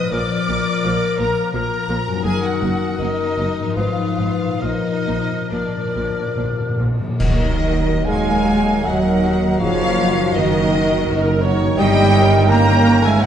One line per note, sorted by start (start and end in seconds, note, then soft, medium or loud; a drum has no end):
0.00 2.19 A#2 medium
0.00 2.21 F3 soft
0.00 2.23 F4 soft
0.00 0.10 B4 medium
0.00 0.12 B4 soft
0.00 0.14 B4 medium
0.00 0.12 D#5 medium
0.00 0.12 D#6 medium
0.07 0.19 A#2 medium
0.07 2.19 A#4 soft
0.07 1.16 D5 medium
0.11 0.20 A#1 medium
0.11 1.51 F3 medium
0.11 0.20 F3 medium
0.11 0.20 A#3 medium
0.11 1.51 A#4 medium
0.11 1.52 A#4 medium
0.11 1.18 D6 medium
0.11 1.51 F6 medium
0.48 0.56 A#1 medium
0.48 0.56 A#2 medium
0.48 0.57 F3 soft
0.48 0.58 A#3 soft
0.84 0.93 A#1 medium
0.84 0.92 A#2 medium
0.84 0.93 F3 medium
0.84 0.93 A#3 medium
1.18 1.27 A#1 medium
1.18 1.27 A#2 medium
1.18 1.28 F3 medium
1.18 1.28 A#3 medium
1.18 1.52 A#4 medium
1.18 1.53 A#5 medium
1.53 1.62 A#1 medium
1.53 1.61 A#2 medium
1.53 2.23 F3 medium
1.53 1.62 F3 medium
1.53 1.62 A#3 medium
1.53 1.98 A#4 medium
1.53 2.23 A#4 medium
1.53 2.22 A#4 medium
1.53 2.24 A#5 medium
1.53 1.99 F6 medium
1.88 1.97 A#1 medium
1.88 1.97 A#2 medium
1.88 1.97 F3 medium
1.88 1.96 A#3 medium
2.07 3.71 F#2 medium
2.11 3.73 F#3 medium
2.16 3.67 D#4 soft
2.21 2.32 F#2 medium
2.21 2.94 D#3 medium
2.21 2.32 F#3 medium
2.21 2.33 A#3 medium
2.21 2.42 G#4 medium
2.21 3.78 A#4 medium
2.21 2.95 A#4 medium
2.21 2.95 D#6 medium
2.25 2.33 F#1 medium
2.25 2.43 G#5 loud
2.44 3.00 F#4 medium
2.44 3.00 F#5 medium
2.62 2.70 F#1 medium
2.62 2.70 F#2 medium
2.62 2.70 F#3 soft
2.62 2.70 A#3 soft
2.98 3.07 F#1 medium
2.98 3.08 F#2 medium
2.98 3.75 D#3 medium
2.98 3.10 A#3 medium
2.98 3.75 D#4 medium
2.98 3.78 A#4 medium
2.98 3.75 A#4 medium
2.98 3.77 D#5 medium
2.98 3.75 D#6 medium
3.02 3.10 F#3 medium
3.38 3.46 F#1 medium
3.38 3.46 F#2 medium
3.38 3.46 F#3 soft
3.38 3.47 A#3 soft
3.59 4.57 G#2 medium
3.64 4.47 F3 soft
3.69 4.62 D#4 soft
3.73 3.85 G#1 medium
3.73 3.85 G#2 medium
3.73 4.60 D#3 medium
3.73 3.85 B3 soft
3.73 4.64 B4 soft
3.73 4.62 B4 medium
3.73 4.63 D#6 medium
3.77 3.85 F3 medium
3.77 4.62 F4 medium
3.77 4.61 F5 medium
4.18 4.27 G#1 medium
4.18 4.27 G#2 medium
4.18 4.26 F3 soft
4.18 4.26 B3 soft
4.45 7.16 A#2 soft
4.45 7.17 F3 soft
4.53 7.41 A#3 soft
4.57 7.62 A#4 soft
4.61 4.71 A#1 medium
4.61 4.70 A#2 medium
4.61 4.70 F3 medium
4.61 5.51 F3 soft
4.61 4.69 A#3 soft
4.61 5.50 D#4 medium
4.61 5.50 A#4 medium
4.61 5.50 A#4 soft
4.61 5.51 D#5 medium
4.61 5.51 F6 medium
4.71 4.78 A#2 soft
4.79 4.87 A#2 soft
4.88 4.96 A#2 soft
4.97 5.04 A#2 soft
5.05 5.16 A#1 soft
5.05 5.13 A#2 soft
5.05 5.15 A#2 medium
5.05 5.15 F3 soft
5.05 5.16 A#3 soft
5.14 5.23 A#2 soft
5.24 5.30 A#2 soft
5.32 5.39 A#2 soft
5.40 5.49 A#2 soft
5.50 5.60 A#1 soft
5.50 5.57 A#2 soft
5.50 5.59 A#2 soft
5.50 5.59 F3 soft
5.50 6.85 F3 soft
5.50 5.60 A#3 soft
5.50 6.77 D4 soft
5.50 6.84 A#4 medium
5.50 6.84 A#4 soft
5.50 6.81 D5 medium
5.50 6.84 F6 medium
5.58 5.67 A#2 soft
5.68 5.75 A#2 soft
5.76 5.83 A#2 soft
5.85 5.92 A#2 soft
5.93 6.04 A#1 soft
5.93 6.00 A#2 soft
5.93 6.03 A#2 soft
5.93 6.04 F3 soft
5.93 6.03 A#3 soft
6.01 6.08 A#2 soft
6.10 6.16 A#2 medium
6.18 6.25 A#2 medium
6.26 6.34 A#2 medium
6.35 6.47 A#1 soft
6.35 6.42 A#2 medium
6.35 6.46 A#2 soft
6.35 6.45 F3 soft
6.35 6.45 A#3 soft
6.44 6.50 A#2 medium
6.51 6.59 A#2 medium
6.60 6.68 A#2 medium
6.69 6.75 A#2 medium
6.76 6.88 A#1 soft
6.76 6.82 A#2 medium
6.76 6.87 F3 soft
6.80 6.88 A#2 soft
6.80 6.91 A#2 medium
6.80 6.88 A#3 soft
6.93 6.99 A#2 medium
7.00 7.07 A#2 medium
7.08 7.17 A#2 medium
7.19 7.97 D#2 medium
7.19 8.42 D#3 medium
7.19 9.63 D#3 medium
7.19 8.02 D#3 medium
7.19 8.03 D#3 medium
7.19 9.56 F#3 medium
7.19 12.45 D#4 medium
7.19 7.41 F#4 medium
7.19 8.03 A#4 medium
7.19 8.07 D#5 medium
7.19 8.02 D#5 medium
7.19 concert bass drum medium
7.19 crash medium
7.42 9.40 A#3 soft
7.42 7.64 A#4 medium
7.63 7.86 F#4 medium
7.63 8.06 A#4 soft
7.85 9.02 F#4 medium
7.85 8.07 A#4 soft
8.05 8.76 D#2 medium
8.05 8.84 G#3 medium
8.05 8.26 F#4 medium
8.05 8.42 G#4 medium
8.05 8.84 A#4 medium
8.05 8.84 F5 medium
8.05 8.83 G#5 medium
8.05 8.84 G#5 medium
8.27 8.47 A#4 medium
8.27 8.64 A#5 medium
8.45 8.84 F#4 medium
8.45 8.66 F#4 medium
8.45 11.81 F#5 medium
8.66 8.85 A#4 medium
8.83 9.52 D#2 medium
8.83 9.60 F#3 medium
8.83 9.59 F#3 medium
8.83 9.02 F#4 medium
8.83 9.60 A#4 medium
8.83 9.21 A#4 medium
8.83 9.60 D#5 medium
8.83 9.62 F#5 medium
8.83 9.60 F#5 medium
9.03 11.81 F#4 medium
9.03 9.23 A#4 medium
9.22 9.42 F#4 medium
9.22 10.15 A#4 medium
9.41 9.78 A#3 medium
9.41 9.61 A#4 medium
9.59 10.26 F#1 medium
9.59 11.81 F#2 medium
9.59 13.26 D#3 medium
9.59 10.34 F3 medium
9.59 10.33 F3 loud
9.59 9.78 F#4 medium
9.59 9.96 G#4 medium
9.59 10.32 C#5 medium
9.59 10.33 F5 loud
9.59 10.37 F5 medium
9.79 11.44 A#3 medium
9.79 9.98 A#4 medium
9.97 10.33 D#4 medium
9.97 11.08 F#4 medium
9.97 10.16 F#4 medium
10.16 11.08 A#4 medium
10.16 10.35 A#4 medium
10.34 11.00 F#1 medium
10.34 11.43 D#3 medium
10.34 11.45 D#3 medium
10.34 11.26 D#4 medium
10.34 10.52 F#4 medium
10.34 11.41 A#4 medium
10.34 11.43 D#5 loud
10.34 11.44 D#5 medium
10.53 10.71 A#4 medium
10.71 10.90 F#4 medium
10.71 13.26 A#5 medium
10.89 11.08 A#4 medium
10.89 12.66 D#5 medium
11.08 11.70 F#1 loud
11.08 11.25 F#4 medium
11.08 11.44 A#4 medium
11.08 12.49 A#4 medium
11.27 12.14 D#4 medium
11.27 11.44 A#4 medium
11.44 11.96 A#3 medium
11.44 11.61 F#4 medium
11.44 11.78 C#5 medium
11.62 11.82 F#3 medium
11.62 11.79 A#4 medium
11.77 13.19 G1 loud
11.77 12.45 G3 loud
11.77 12.46 G3 loud
11.77 12.46 C#5 medium
11.77 12.45 D#5 loud
11.77 12.14 D#5 medium
11.77 12.51 G5 loud
11.77 12.46 G5 loud
11.81 13.26 G2 medium
11.97 13.26 A#3 medium
12.14 13.23 A#4 medium
12.32 13.26 C#5 medium
12.47 13.03 A#3 loud
12.47 13.05 A#3 loud
12.47 13.23 C#4 medium
12.47 13.26 A#4 medium
12.47 13.22 C#5 medium
12.47 13.04 G5 loud
12.47 13.03 A#5 loud
12.47 13.04 A#5 loud
12.67 13.04 D#5 medium
12.87 13.26 C#6 medium
13.02 13.22 G#3 medium
13.02 13.23 G#3 medium
13.02 13.26 D#5 medium
13.02 13.22 E5 medium
13.02 13.21 G#5 medium
13.02 13.23 G#5 loud
13.21 13.26 G#2 medium
13.21 13.26 F#3 medium
13.21 13.26 B3 medium
13.21 13.26 B4 medium
13.21 13.26 D#5 medium
13.21 13.26 F#5 loud
13.21 13.26 F#5 medium